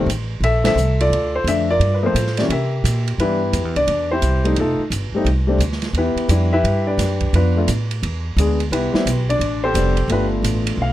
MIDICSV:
0, 0, Header, 1, 5, 480
1, 0, Start_track
1, 0, Tempo, 345622
1, 587, Time_signature, 4, 2, 24, 8
1, 15175, End_track
2, 0, Start_track
2, 0, Title_t, "Upright piano"
2, 0, Program_c, 0, 0
2, 607, Note_on_c, 0, 76, 105
2, 617, Note_on_c, 0, 69, 69
2, 883, Note_off_c, 0, 76, 0
2, 889, Note_on_c, 0, 50, 68
2, 889, Note_on_c, 0, 53, 58
2, 900, Note_on_c, 0, 57, 69
2, 906, Note_on_c, 0, 60, 72
2, 915, Note_off_c, 0, 69, 0
2, 925, Note_on_c, 0, 76, 112
2, 936, Note_on_c, 0, 69, 70
2, 1047, Note_off_c, 0, 50, 0
2, 1047, Note_off_c, 0, 53, 0
2, 1053, Note_off_c, 0, 57, 0
2, 1056, Note_off_c, 0, 60, 0
2, 1385, Note_off_c, 0, 69, 0
2, 1401, Note_on_c, 0, 65, 67
2, 1403, Note_off_c, 0, 76, 0
2, 1406, Note_on_c, 0, 69, 69
2, 1406, Note_on_c, 0, 74, 97
2, 1837, Note_off_c, 0, 74, 0
2, 1882, Note_on_c, 0, 72, 84
2, 2030, Note_off_c, 0, 72, 0
2, 2038, Note_on_c, 0, 50, 54
2, 2053, Note_on_c, 0, 53, 50
2, 2056, Note_on_c, 0, 57, 50
2, 2056, Note_on_c, 0, 62, 60
2, 2058, Note_on_c, 0, 76, 91
2, 2291, Note_off_c, 0, 65, 0
2, 2294, Note_off_c, 0, 69, 0
2, 2308, Note_off_c, 0, 50, 0
2, 2316, Note_off_c, 0, 53, 0
2, 2317, Note_off_c, 0, 57, 0
2, 2317, Note_off_c, 0, 62, 0
2, 2357, Note_off_c, 0, 76, 0
2, 2365, Note_on_c, 0, 70, 64
2, 2367, Note_on_c, 0, 74, 104
2, 2368, Note_on_c, 0, 65, 60
2, 2699, Note_on_c, 0, 71, 62
2, 2715, Note_off_c, 0, 74, 0
2, 2818, Note_on_c, 0, 53, 74
2, 2819, Note_off_c, 0, 71, 0
2, 2819, Note_on_c, 0, 57, 70
2, 2834, Note_off_c, 0, 65, 0
2, 2834, Note_on_c, 0, 58, 70
2, 2843, Note_on_c, 0, 60, 75
2, 2854, Note_on_c, 0, 69, 58
2, 2855, Note_on_c, 0, 65, 64
2, 2863, Note_on_c, 0, 72, 81
2, 2972, Note_off_c, 0, 53, 0
2, 2972, Note_off_c, 0, 57, 0
2, 2980, Note_off_c, 0, 58, 0
2, 2984, Note_off_c, 0, 60, 0
2, 3254, Note_off_c, 0, 70, 0
2, 3304, Note_on_c, 0, 74, 81
2, 3313, Note_on_c, 0, 52, 62
2, 3321, Note_on_c, 0, 55, 59
2, 3331, Note_off_c, 0, 72, 0
2, 3337, Note_on_c, 0, 58, 58
2, 3345, Note_on_c, 0, 61, 68
2, 3374, Note_off_c, 0, 74, 0
2, 3443, Note_off_c, 0, 65, 0
2, 3443, Note_off_c, 0, 69, 0
2, 3459, Note_off_c, 0, 52, 0
2, 3463, Note_off_c, 0, 55, 0
2, 3471, Note_off_c, 0, 58, 0
2, 3475, Note_off_c, 0, 61, 0
2, 3494, Note_on_c, 0, 76, 75
2, 3496, Note_on_c, 0, 67, 56
2, 3502, Note_on_c, 0, 70, 57
2, 4213, Note_off_c, 0, 76, 0
2, 4387, Note_off_c, 0, 67, 0
2, 4390, Note_off_c, 0, 70, 0
2, 4446, Note_on_c, 0, 52, 49
2, 4447, Note_on_c, 0, 71, 76
2, 4448, Note_on_c, 0, 64, 63
2, 4451, Note_on_c, 0, 59, 63
2, 4456, Note_on_c, 0, 55, 47
2, 4462, Note_on_c, 0, 67, 59
2, 4473, Note_on_c, 0, 62, 59
2, 4713, Note_off_c, 0, 52, 0
2, 4718, Note_off_c, 0, 55, 0
2, 4727, Note_off_c, 0, 62, 0
2, 5171, Note_off_c, 0, 64, 0
2, 5171, Note_off_c, 0, 71, 0
2, 5172, Note_off_c, 0, 59, 0
2, 5178, Note_off_c, 0, 67, 0
2, 5228, Note_on_c, 0, 74, 93
2, 5231, Note_on_c, 0, 62, 73
2, 5669, Note_off_c, 0, 74, 0
2, 5671, Note_off_c, 0, 62, 0
2, 5714, Note_on_c, 0, 72, 86
2, 5727, Note_on_c, 0, 60, 59
2, 5727, Note_on_c, 0, 64, 65
2, 5733, Note_on_c, 0, 67, 67
2, 6171, Note_on_c, 0, 55, 69
2, 6173, Note_off_c, 0, 60, 0
2, 6178, Note_on_c, 0, 57, 57
2, 6194, Note_on_c, 0, 60, 57
2, 6198, Note_on_c, 0, 63, 72
2, 6314, Note_off_c, 0, 72, 0
2, 6321, Note_off_c, 0, 64, 0
2, 6324, Note_off_c, 0, 67, 0
2, 6330, Note_off_c, 0, 55, 0
2, 6334, Note_off_c, 0, 57, 0
2, 6342, Note_off_c, 0, 60, 0
2, 6344, Note_off_c, 0, 63, 0
2, 6388, Note_on_c, 0, 69, 76
2, 6399, Note_on_c, 0, 63, 59
2, 6402, Note_on_c, 0, 57, 60
2, 6402, Note_on_c, 0, 65, 54
2, 6668, Note_off_c, 0, 69, 0
2, 6673, Note_off_c, 0, 63, 0
2, 6675, Note_off_c, 0, 57, 0
2, 6675, Note_off_c, 0, 65, 0
2, 7145, Note_on_c, 0, 55, 73
2, 7160, Note_on_c, 0, 57, 64
2, 7165, Note_on_c, 0, 60, 61
2, 7174, Note_on_c, 0, 63, 76
2, 7298, Note_off_c, 0, 55, 0
2, 7306, Note_off_c, 0, 57, 0
2, 7308, Note_off_c, 0, 60, 0
2, 7312, Note_off_c, 0, 63, 0
2, 7597, Note_on_c, 0, 55, 68
2, 7606, Note_on_c, 0, 57, 56
2, 7615, Note_on_c, 0, 60, 63
2, 7628, Note_on_c, 0, 62, 73
2, 7765, Note_off_c, 0, 55, 0
2, 7769, Note_off_c, 0, 57, 0
2, 7774, Note_off_c, 0, 60, 0
2, 7780, Note_off_c, 0, 62, 0
2, 8294, Note_on_c, 0, 59, 60
2, 8300, Note_on_c, 0, 71, 69
2, 8302, Note_on_c, 0, 67, 59
2, 8308, Note_on_c, 0, 64, 58
2, 8733, Note_off_c, 0, 59, 0
2, 8743, Note_off_c, 0, 64, 0
2, 8749, Note_on_c, 0, 55, 61
2, 8754, Note_on_c, 0, 59, 52
2, 8757, Note_on_c, 0, 62, 52
2, 8764, Note_on_c, 0, 64, 60
2, 9020, Note_off_c, 0, 71, 0
2, 9021, Note_off_c, 0, 67, 0
2, 9028, Note_off_c, 0, 55, 0
2, 9030, Note_off_c, 0, 59, 0
2, 9032, Note_off_c, 0, 62, 0
2, 9035, Note_off_c, 0, 64, 0
2, 9065, Note_on_c, 0, 76, 92
2, 9073, Note_on_c, 0, 67, 78
2, 9075, Note_on_c, 0, 71, 83
2, 9082, Note_on_c, 0, 64, 73
2, 9510, Note_off_c, 0, 76, 0
2, 9514, Note_off_c, 0, 67, 0
2, 9515, Note_off_c, 0, 71, 0
2, 9519, Note_off_c, 0, 64, 0
2, 9541, Note_on_c, 0, 74, 81
2, 9546, Note_on_c, 0, 67, 64
2, 9552, Note_on_c, 0, 62, 67
2, 9555, Note_on_c, 0, 71, 65
2, 10149, Note_off_c, 0, 74, 0
2, 10152, Note_off_c, 0, 67, 0
2, 10155, Note_off_c, 0, 62, 0
2, 10156, Note_off_c, 0, 71, 0
2, 10214, Note_on_c, 0, 71, 71
2, 10217, Note_on_c, 0, 65, 55
2, 10221, Note_on_c, 0, 59, 59
2, 10224, Note_on_c, 0, 62, 56
2, 10496, Note_off_c, 0, 59, 0
2, 10502, Note_off_c, 0, 62, 0
2, 10502, Note_off_c, 0, 71, 0
2, 10504, Note_off_c, 0, 65, 0
2, 10506, Note_on_c, 0, 57, 62
2, 10517, Note_on_c, 0, 59, 59
2, 10523, Note_on_c, 0, 62, 60
2, 10533, Note_on_c, 0, 65, 65
2, 10660, Note_off_c, 0, 57, 0
2, 10665, Note_off_c, 0, 59, 0
2, 10668, Note_off_c, 0, 62, 0
2, 10673, Note_off_c, 0, 65, 0
2, 11626, Note_on_c, 0, 56, 54
2, 11641, Note_on_c, 0, 59, 53
2, 11648, Note_on_c, 0, 62, 51
2, 11658, Note_on_c, 0, 68, 66
2, 11906, Note_off_c, 0, 56, 0
2, 11914, Note_off_c, 0, 59, 0
2, 11917, Note_off_c, 0, 62, 0
2, 11922, Note_off_c, 0, 68, 0
2, 12113, Note_on_c, 0, 71, 73
2, 12115, Note_on_c, 0, 67, 58
2, 12118, Note_on_c, 0, 64, 55
2, 12126, Note_on_c, 0, 59, 61
2, 12387, Note_off_c, 0, 59, 0
2, 12393, Note_on_c, 0, 55, 67
2, 12407, Note_off_c, 0, 64, 0
2, 12408, Note_on_c, 0, 59, 65
2, 12418, Note_on_c, 0, 60, 65
2, 12428, Note_on_c, 0, 64, 76
2, 12563, Note_off_c, 0, 55, 0
2, 12570, Note_off_c, 0, 59, 0
2, 12576, Note_off_c, 0, 60, 0
2, 12580, Note_off_c, 0, 64, 0
2, 12845, Note_off_c, 0, 71, 0
2, 12846, Note_off_c, 0, 67, 0
2, 12908, Note_on_c, 0, 74, 98
2, 12917, Note_on_c, 0, 62, 83
2, 13350, Note_off_c, 0, 74, 0
2, 13355, Note_off_c, 0, 62, 0
2, 13383, Note_on_c, 0, 72, 97
2, 13393, Note_on_c, 0, 67, 72
2, 13395, Note_on_c, 0, 69, 75
2, 13398, Note_on_c, 0, 60, 70
2, 13533, Note_off_c, 0, 60, 0
2, 13535, Note_on_c, 0, 55, 60
2, 13540, Note_on_c, 0, 59, 47
2, 13554, Note_on_c, 0, 60, 49
2, 13554, Note_on_c, 0, 62, 55
2, 13819, Note_off_c, 0, 55, 0
2, 13822, Note_off_c, 0, 59, 0
2, 13829, Note_off_c, 0, 60, 0
2, 13829, Note_off_c, 0, 62, 0
2, 13988, Note_off_c, 0, 72, 0
2, 13994, Note_off_c, 0, 67, 0
2, 13995, Note_off_c, 0, 69, 0
2, 14019, Note_on_c, 0, 57, 64
2, 14038, Note_on_c, 0, 59, 58
2, 14046, Note_on_c, 0, 62, 54
2, 14054, Note_on_c, 0, 65, 63
2, 14059, Note_on_c, 0, 71, 82
2, 14060, Note_on_c, 0, 67, 60
2, 14234, Note_off_c, 0, 71, 0
2, 14235, Note_off_c, 0, 67, 0
2, 15024, Note_on_c, 0, 77, 84
2, 15175, Note_off_c, 0, 57, 0
2, 15175, Note_off_c, 0, 59, 0
2, 15175, Note_off_c, 0, 62, 0
2, 15175, Note_off_c, 0, 65, 0
2, 15175, Note_off_c, 0, 77, 0
2, 15175, End_track
3, 0, Start_track
3, 0, Title_t, "Upright bass"
3, 0, Program_c, 1, 32
3, 87, Note_on_c, 1, 33, 84
3, 554, Note_off_c, 1, 33, 0
3, 562, Note_on_c, 1, 34, 80
3, 1035, Note_off_c, 1, 34, 0
3, 1044, Note_on_c, 1, 36, 87
3, 1520, Note_off_c, 1, 36, 0
3, 1530, Note_on_c, 1, 38, 72
3, 1996, Note_off_c, 1, 38, 0
3, 2004, Note_on_c, 1, 41, 83
3, 2480, Note_off_c, 1, 41, 0
3, 2494, Note_on_c, 1, 43, 75
3, 2966, Note_off_c, 1, 43, 0
3, 2977, Note_on_c, 1, 45, 77
3, 3447, Note_off_c, 1, 45, 0
3, 3462, Note_on_c, 1, 48, 75
3, 3930, Note_off_c, 1, 48, 0
3, 3943, Note_on_c, 1, 46, 84
3, 4411, Note_off_c, 1, 46, 0
3, 4422, Note_on_c, 1, 43, 74
3, 4891, Note_off_c, 1, 43, 0
3, 4901, Note_on_c, 1, 41, 75
3, 5067, Note_off_c, 1, 41, 0
3, 5067, Note_on_c, 1, 40, 48
3, 5208, Note_off_c, 1, 40, 0
3, 5216, Note_on_c, 1, 36, 56
3, 5371, Note_off_c, 1, 36, 0
3, 5382, Note_on_c, 1, 40, 73
3, 5852, Note_off_c, 1, 40, 0
3, 5860, Note_on_c, 1, 36, 75
3, 6331, Note_off_c, 1, 36, 0
3, 6342, Note_on_c, 1, 29, 74
3, 6631, Note_off_c, 1, 29, 0
3, 6810, Note_on_c, 1, 31, 80
3, 7106, Note_off_c, 1, 31, 0
3, 7286, Note_on_c, 1, 36, 79
3, 7748, Note_off_c, 1, 36, 0
3, 7757, Note_on_c, 1, 38, 82
3, 8233, Note_off_c, 1, 38, 0
3, 8241, Note_on_c, 1, 40, 82
3, 8542, Note_off_c, 1, 40, 0
3, 8732, Note_on_c, 1, 41, 85
3, 9209, Note_off_c, 1, 41, 0
3, 9219, Note_on_c, 1, 43, 77
3, 9681, Note_off_c, 1, 43, 0
3, 9689, Note_on_c, 1, 42, 83
3, 10168, Note_off_c, 1, 42, 0
3, 10181, Note_on_c, 1, 41, 80
3, 10654, Note_off_c, 1, 41, 0
3, 10670, Note_on_c, 1, 45, 82
3, 11138, Note_off_c, 1, 45, 0
3, 11147, Note_on_c, 1, 40, 80
3, 11610, Note_off_c, 1, 40, 0
3, 11618, Note_on_c, 1, 38, 88
3, 12092, Note_off_c, 1, 38, 0
3, 12100, Note_on_c, 1, 36, 78
3, 12392, Note_off_c, 1, 36, 0
3, 12574, Note_on_c, 1, 35, 82
3, 13037, Note_off_c, 1, 35, 0
3, 13045, Note_on_c, 1, 33, 72
3, 13524, Note_off_c, 1, 33, 0
3, 13530, Note_on_c, 1, 29, 89
3, 13989, Note_off_c, 1, 29, 0
3, 13997, Note_on_c, 1, 31, 81
3, 14470, Note_off_c, 1, 31, 0
3, 14478, Note_on_c, 1, 33, 76
3, 14952, Note_off_c, 1, 33, 0
3, 14960, Note_on_c, 1, 35, 73
3, 15175, Note_off_c, 1, 35, 0
3, 15175, End_track
4, 0, Start_track
4, 0, Title_t, "Muted upright bass strokes"
4, 6649, Note_on_c, 9, 29, 35
4, 6788, Note_off_c, 9, 29, 0
4, 7117, Note_on_c, 9, 29, 34
4, 7256, Note_off_c, 9, 29, 0
4, 8551, Note_on_c, 9, 29, 37
4, 8690, Note_off_c, 9, 29, 0
4, 12412, Note_on_c, 9, 29, 37
4, 12551, Note_off_c, 9, 29, 0
4, 15175, End_track
5, 0, Start_track
5, 0, Title_t, "Drums"
5, 134, Note_on_c, 9, 44, 61
5, 134, Note_on_c, 9, 51, 61
5, 273, Note_off_c, 9, 44, 0
5, 273, Note_off_c, 9, 51, 0
5, 604, Note_on_c, 9, 51, 55
5, 743, Note_off_c, 9, 51, 0
5, 897, Note_on_c, 9, 38, 75
5, 900, Note_on_c, 9, 51, 67
5, 1036, Note_off_c, 9, 38, 0
5, 1039, Note_off_c, 9, 51, 0
5, 1077, Note_on_c, 9, 44, 57
5, 1216, Note_off_c, 9, 44, 0
5, 1396, Note_on_c, 9, 51, 49
5, 1534, Note_off_c, 9, 51, 0
5, 1567, Note_on_c, 9, 51, 53
5, 1706, Note_off_c, 9, 51, 0
5, 2047, Note_on_c, 9, 44, 51
5, 2047, Note_on_c, 9, 51, 66
5, 2185, Note_off_c, 9, 44, 0
5, 2185, Note_off_c, 9, 51, 0
5, 2511, Note_on_c, 9, 51, 52
5, 2650, Note_off_c, 9, 51, 0
5, 2997, Note_on_c, 9, 44, 51
5, 2997, Note_on_c, 9, 51, 68
5, 3136, Note_off_c, 9, 44, 0
5, 3136, Note_off_c, 9, 51, 0
5, 3150, Note_on_c, 9, 38, 25
5, 3289, Note_off_c, 9, 38, 0
5, 3295, Note_on_c, 9, 51, 51
5, 3311, Note_on_c, 9, 38, 45
5, 3434, Note_off_c, 9, 51, 0
5, 3450, Note_off_c, 9, 38, 0
5, 3476, Note_on_c, 9, 51, 59
5, 3615, Note_off_c, 9, 51, 0
5, 3961, Note_on_c, 9, 44, 56
5, 3961, Note_on_c, 9, 51, 70
5, 4100, Note_off_c, 9, 44, 0
5, 4100, Note_off_c, 9, 51, 0
5, 4272, Note_on_c, 9, 51, 43
5, 4411, Note_off_c, 9, 51, 0
5, 4438, Note_on_c, 9, 51, 51
5, 4577, Note_off_c, 9, 51, 0
5, 4906, Note_on_c, 9, 44, 49
5, 4906, Note_on_c, 9, 51, 63
5, 5045, Note_off_c, 9, 44, 0
5, 5045, Note_off_c, 9, 51, 0
5, 5224, Note_on_c, 9, 51, 43
5, 5363, Note_off_c, 9, 51, 0
5, 5383, Note_on_c, 9, 51, 62
5, 5521, Note_off_c, 9, 51, 0
5, 5861, Note_on_c, 9, 44, 50
5, 5861, Note_on_c, 9, 51, 58
5, 6000, Note_off_c, 9, 44, 0
5, 6000, Note_off_c, 9, 51, 0
5, 6183, Note_on_c, 9, 51, 43
5, 6322, Note_off_c, 9, 51, 0
5, 6337, Note_on_c, 9, 51, 52
5, 6476, Note_off_c, 9, 51, 0
5, 6828, Note_on_c, 9, 44, 60
5, 6828, Note_on_c, 9, 51, 64
5, 6967, Note_off_c, 9, 44, 0
5, 6967, Note_off_c, 9, 51, 0
5, 7310, Note_on_c, 9, 51, 51
5, 7449, Note_off_c, 9, 51, 0
5, 7783, Note_on_c, 9, 44, 54
5, 7783, Note_on_c, 9, 51, 62
5, 7922, Note_off_c, 9, 44, 0
5, 7922, Note_off_c, 9, 51, 0
5, 7949, Note_on_c, 9, 38, 28
5, 8080, Note_on_c, 9, 51, 40
5, 8088, Note_off_c, 9, 38, 0
5, 8089, Note_on_c, 9, 38, 38
5, 8219, Note_off_c, 9, 51, 0
5, 8227, Note_off_c, 9, 38, 0
5, 8256, Note_on_c, 9, 51, 48
5, 8395, Note_off_c, 9, 51, 0
5, 8575, Note_on_c, 9, 51, 41
5, 8714, Note_off_c, 9, 51, 0
5, 8738, Note_on_c, 9, 44, 61
5, 8738, Note_on_c, 9, 51, 63
5, 8877, Note_off_c, 9, 44, 0
5, 8877, Note_off_c, 9, 51, 0
5, 9232, Note_on_c, 9, 51, 55
5, 9371, Note_off_c, 9, 51, 0
5, 9704, Note_on_c, 9, 38, 35
5, 9707, Note_on_c, 9, 44, 51
5, 9707, Note_on_c, 9, 51, 62
5, 9843, Note_off_c, 9, 38, 0
5, 9846, Note_off_c, 9, 44, 0
5, 9846, Note_off_c, 9, 51, 0
5, 10006, Note_on_c, 9, 51, 38
5, 10016, Note_on_c, 9, 36, 48
5, 10145, Note_off_c, 9, 51, 0
5, 10155, Note_off_c, 9, 36, 0
5, 10191, Note_on_c, 9, 51, 55
5, 10330, Note_off_c, 9, 51, 0
5, 10663, Note_on_c, 9, 44, 58
5, 10663, Note_on_c, 9, 51, 62
5, 10802, Note_off_c, 9, 44, 0
5, 10802, Note_off_c, 9, 51, 0
5, 10985, Note_on_c, 9, 51, 49
5, 11124, Note_off_c, 9, 51, 0
5, 11155, Note_on_c, 9, 51, 58
5, 11294, Note_off_c, 9, 51, 0
5, 11642, Note_on_c, 9, 44, 56
5, 11642, Note_on_c, 9, 51, 67
5, 11781, Note_off_c, 9, 44, 0
5, 11781, Note_off_c, 9, 51, 0
5, 11945, Note_on_c, 9, 51, 44
5, 12084, Note_off_c, 9, 51, 0
5, 12122, Note_on_c, 9, 51, 62
5, 12260, Note_off_c, 9, 51, 0
5, 12424, Note_on_c, 9, 38, 51
5, 12563, Note_off_c, 9, 38, 0
5, 12595, Note_on_c, 9, 44, 49
5, 12595, Note_on_c, 9, 51, 71
5, 12733, Note_off_c, 9, 44, 0
5, 12733, Note_off_c, 9, 51, 0
5, 12916, Note_on_c, 9, 51, 45
5, 13055, Note_off_c, 9, 51, 0
5, 13071, Note_on_c, 9, 51, 59
5, 13210, Note_off_c, 9, 51, 0
5, 13542, Note_on_c, 9, 44, 57
5, 13542, Note_on_c, 9, 51, 63
5, 13681, Note_off_c, 9, 44, 0
5, 13681, Note_off_c, 9, 51, 0
5, 13844, Note_on_c, 9, 51, 45
5, 13983, Note_off_c, 9, 51, 0
5, 14020, Note_on_c, 9, 51, 52
5, 14159, Note_off_c, 9, 51, 0
5, 14504, Note_on_c, 9, 44, 54
5, 14504, Note_on_c, 9, 51, 70
5, 14643, Note_off_c, 9, 44, 0
5, 14643, Note_off_c, 9, 51, 0
5, 14815, Note_on_c, 9, 51, 65
5, 14953, Note_off_c, 9, 51, 0
5, 15175, End_track
0, 0, End_of_file